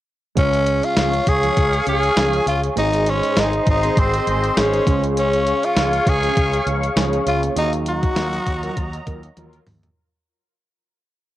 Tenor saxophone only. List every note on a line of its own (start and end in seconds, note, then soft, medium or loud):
0.38 0.86 C#4 medium
0.85 1.30 F4 medium
1.28 1.87 G#4 loud
1.88 2.43 G#4 medium
2.48 2.61 F4 medium
2.79 3.11 D#4 loud
3.10 3.41 C#4 medium
3.40 3.68 D#4 medium
3.70 4.01 D#4 medium
3.99 4.28 C4 medium
4.30 4.61 C4 medium
4.59 5.04 C#4 medium
5.18 5.66 C#4 medium
5.65 6.10 F4 medium
6.09 6.68 G#4 medium
7.28 7.41 F4 medium
7.58 7.71 D#4 medium
7.89 9.04 F#4 loud